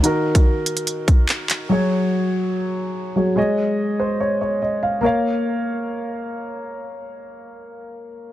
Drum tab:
HH |x--x--xxx-x-x-x-|----------------|----------------|----------------|
CP |------------x-x-|----------------|----------------|----------------|
BD |---o------o-----|----------------|----------------|----------------|

HH |----------------|
CP |----------------|
BD |----------------|